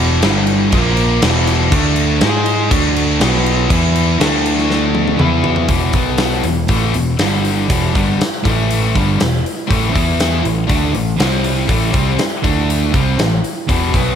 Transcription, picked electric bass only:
Already playing: E1
0.24 G1
0.73 A#1
1.23 E1
1.72 D2
2.23 G#2
2.72 D2
3.21 B1
3.70 E2
4.19 D2
5.20 E2
5.69 E1
5.94 B1
6.43 E1
6.69 A1
6.94 E1
7.19 G1
7.70 E1
7.96 G1
8.20 muted picked electric bass stroke
8.46 A1
8.95 G1
9.20 E1
9.71 A1
9.95 E2
10.44 A1
10.69 D2
10.94 A1
11.20 C2
11.69 A1
11.94 C2
12.20 muted picked electric bass stroke
12.44 D2
12.94 C2
13.19 A1
13.69 E1
13.94 B1

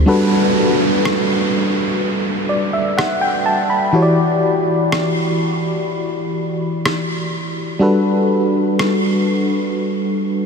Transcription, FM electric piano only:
0.06 G3 D4 F#4 A4 B4
2.49 D5
2.73 E5
2.98 F#5
3.21 G5
3.46 A5
3.70 B5
3.93 E3 E4 F#4 G4 C#5
4.02 D5
7.79 G3 D4 F#4 A4 B4

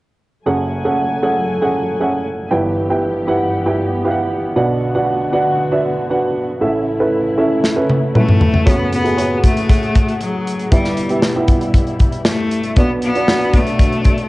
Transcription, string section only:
0.46 F#3 A3 G#5
2.51 G2 E3 B3 G4
4.56 D3 F#4
6.60 C#3 A3 E4
8.66 A2 F#4 G#4
10.72 B2 G3 E4
12.76 B2 F#3 D4

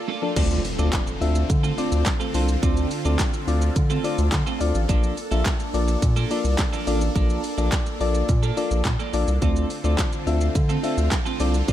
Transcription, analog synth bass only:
0.36 D2
0.79 D2
1.21 D2
1.50 D3
1.92 D2
2.34 C2
2.63 D2
3.05 D2
3.48 D2
3.76 D3
4.18 D2
4.32 D3
4.61 D2
4.75 A1
4.89 A#1
5.32 A#1
5.74 A#1
6.02 A#2
6.45 C2
6.87 A1
7.16 A#1
7.58 A#1
8.00 A#1
8.29 A#2
8.71 A#1
8.85 A#2
9.13 A#1
9.28 C2
9.42 D2
9.84 D2
10.27 D2
10.55 D3
10.98 D2
11.40 C2
11.68 D2

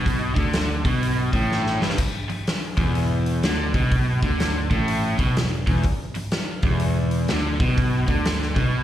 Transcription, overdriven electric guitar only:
Already playing: B2
0.34 D3
0.86 B2
1.33 A2
1.81 G2
2.30 muted overdriven electric guitar stroke
2.78 E2
3.44 D3
3.75 B2
4.23 D3
4.71 A2
5.19 B2
5.37 E2
5.68 E2
6.17 muted overdriven electric guitar stroke
6.65 E2
7.30 D3
7.61 B2
8.07 D3
8.56 B2

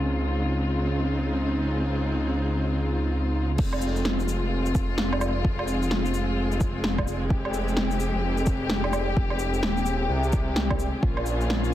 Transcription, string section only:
Already playing: C#3 G#3 C4 D#4 F4
3.57 G#3 C4 F4
7.30 G4
11.02 A#3 C#4 F4

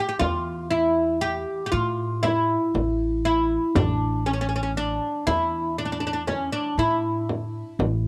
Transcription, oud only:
0.09 G4
0.20 F4
0.71 E4
1.21 G4
1.66 G4
1.72 F4
2.23 E4
3.25 E4
3.76 D4
4.26 C#4
4.33 C#4
4.41 C#4
4.49 C#4
4.56 C#4
4.63 C#4
4.77 D4
5.27 E4
5.78 D4
5.85 D4
5.92 D4
6.00 D4
6.07 D4
6.13 D4
6.27 C#4
6.52 D4
6.79 E4

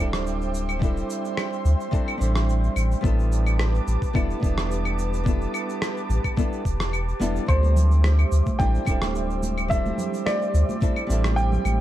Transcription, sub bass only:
0.00 D1
1.65 D2
2.21 A1
2.76 A1
3.04 A1
3.88 A1
4.15 E1
4.43 E1
6.09 A1
6.65 E1
7.20 E1
7.49 D2
8.32 D2
8.60 A1
8.87 D1
10.54 D2
11.10 A1
11.65 A1

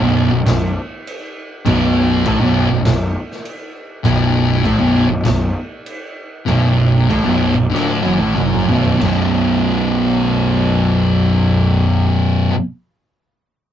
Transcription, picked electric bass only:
0.00 B0
0.31 B0
0.46 B0
1.66 B0
2.25 A1
2.39 B0
2.69 B0
2.85 B0
4.05 B0
4.65 A1
4.80 B0
5.10 B0
5.25 B0
6.48 B0
7.10 A1
7.26 B0
7.57 B0
7.73 D1
8.04 F#1
8.19 A1
8.36 F#1
8.68 B0
9.01 B0

